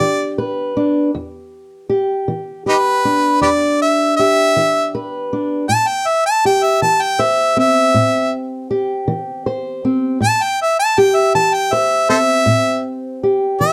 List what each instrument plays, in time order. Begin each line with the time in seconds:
Already playing: steel-string acoustic guitar D4 G4, harmonica D5
0.00 steel-string acoustic guitar E3
0.38 steel-string acoustic guitar B4
0.77 steel-string acoustic guitar D4
1.15 steel-string acoustic guitar E2
1.89 steel-string acoustic guitar G4
2.28 steel-string acoustic guitar E3
2.66 harmonica D#4 G4 B4, steel-string acoustic guitar G4
3.05 steel-string acoustic guitar D4
3.41 steel-string acoustic guitar E2, harmonica G4 B4 D5
3.82 harmonica E5
4.17 steel-string acoustic guitar G4, harmonica E5
4.56 steel-string acoustic guitar E3
4.95 steel-string acoustic guitar B4
5.33 steel-string acoustic guitar D4
5.69 steel-string acoustic guitar A2, harmonica A5
5.87 harmonica G5
6.07 harmonica E5
6.26 harmonica A5
6.45 steel-string acoustic guitar G4, harmonica G5
6.63 harmonica E5
6.82 steel-string acoustic guitar E3, harmonica A5
7.02 harmonica G5
7.19 steel-string acoustic guitar C5, harmonica E5
7.57 steel-string acoustic guitar C4, harmonica E5
7.94 steel-string acoustic guitar A2
8.71 steel-string acoustic guitar G4
9.08 steel-string acoustic guitar E3
9.46 steel-string acoustic guitar C5
9.85 steel-string acoustic guitar C4
10.20 steel-string acoustic guitar A2, harmonica A5
10.42 harmonica G5
10.62 harmonica E5
10.79 harmonica A5
10.98 steel-string acoustic guitar G4, harmonica G5
11.15 harmonica E5
11.35 steel-string acoustic guitar E3, harmonica A5
11.54 harmonica G5
11.73 steel-string acoustic guitar C5, harmonica E5
12.09 steel-string acoustic guitar C4, harmonica A4 C5 E5
12.46 steel-string acoustic guitar A2
13.23 steel-string acoustic guitar G4
13.61 steel-string acoustic guitar E3, harmonica E5